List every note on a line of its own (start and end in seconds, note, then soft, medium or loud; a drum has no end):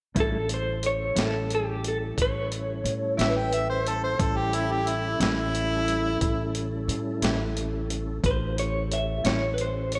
0.15 1.13 A1 medium
0.15 0.36 A2 medium
0.15 0.48 G3 soft
0.15 0.36 G3 medium
0.15 0.50 A#3 soft
0.15 0.36 C#4 medium
0.15 0.50 D4 soft
0.15 0.37 E4 medium
0.15 0.50 F4 medium
0.15 kick medium
0.15 closed hi-hat medium
0.20 0.50 A4 medium
0.49 4.15 G3 medium
0.49 4.16 C#4 medium
0.49 4.16 E4 medium
0.49 4.15 A4 medium
0.49 closed hi-hat medium
0.54 0.83 C5 medium
0.83 1.20 C#5 medium
0.83 closed hi-hat medium
1.15 2.13 A1 medium
1.15 1.38 A2 medium
1.15 1.37 G3 medium
1.15 1.37 C#4 soft
1.15 1.36 E4 medium
1.15 snare loud
1.15 closed hi-hat medium
1.21 1.51 A4 medium
1.50 closed hi-hat medium
1.55 1.87 G4 medium
1.84 1.97 A4 medium
1.84 closed hi-hat medium
2.17 2.81 A1 medium
2.17 kick medium
2.17 closed hi-hat medium
2.22 3.29 C#5 medium
2.52 closed hi-hat medium
2.84 3.15 A2 medium
2.84 closed hi-hat medium
3.17 4.15 A1 medium
3.17 3.39 A2 medium
3.17 3.39 G3 medium
3.17 3.39 C#4 medium
3.17 3.38 E4 medium
3.17 3.35 E5 medium
3.17 snare medium
3.17 closed hi-hat medium
3.29 3.84 B4 medium
3.37 3.52 G5 medium
3.53 3.68 E5 medium
3.53 closed hi-hat medium
3.70 3.85 C5 medium
3.87 4.02 A4 medium
3.87 closed hi-hat medium
4.04 4.21 C5 medium
4.19 5.16 A1 loud
4.19 8.19 G3 medium
4.19 8.19 C#4 medium
4.19 8.19 E4 medium
4.19 8.19 A4 medium
4.19 4.38 A4 medium
4.19 kick medium
4.19 closed hi-hat medium
4.37 4.56 G4 medium
4.53 4.73 E4 medium
4.53 closed hi-hat soft
4.72 4.90 G4 medium
4.87 5.20 E4 medium
4.87 closed hi-hat medium
5.20 6.17 A1 loud
5.20 5.41 A2 medium
5.20 5.41 G3 medium
5.20 5.40 C#4 medium
5.20 5.40 E4 medium
5.20 6.52 E4 medium
5.20 snare loud
5.20 closed hi-hat medium
5.55 closed hi-hat medium
5.88 closed hi-hat medium
6.21 6.85 A1 medium
6.21 kick medium
6.21 closed hi-hat medium
6.55 closed hi-hat medium
6.88 7.19 A2 medium
6.88 closed hi-hat medium
7.22 8.19 A1 medium
7.22 7.43 A2 medium
7.22 7.43 G3 medium
7.22 7.43 C#4 medium
7.22 7.43 E4 medium
7.22 snare medium
7.22 closed hi-hat medium
7.57 closed hi-hat medium
7.90 closed hi-hat medium
8.24 9.21 A1 loud
8.24 8.57 D4 medium
8.24 8.57 F4 medium
8.24 8.57 G#4 medium
8.24 8.57 A#4 medium
8.24 8.56 C5 medium
8.24 kick loud
8.24 closed hi-hat medium
8.56 10.00 C#4 medium
8.56 10.00 E4 medium
8.56 10.00 G4 medium
8.56 10.00 A4 medium
8.56 8.93 C#5 medium
8.56 closed hi-hat medium
8.92 9.24 E5 medium
8.92 closed hi-hat medium
9.24 10.00 A1 medium
9.24 9.46 A2 medium
9.24 9.45 G3 medium
9.24 9.45 C#4 medium
9.24 9.45 E4 medium
9.24 9.50 C#5 medium
9.24 snare loud
9.24 closed hi-hat medium
9.54 9.60 B4 medium
9.58 9.91 C5 medium
9.58 closed hi-hat soft
9.92 10.00 C#5 medium
9.92 closed hi-hat medium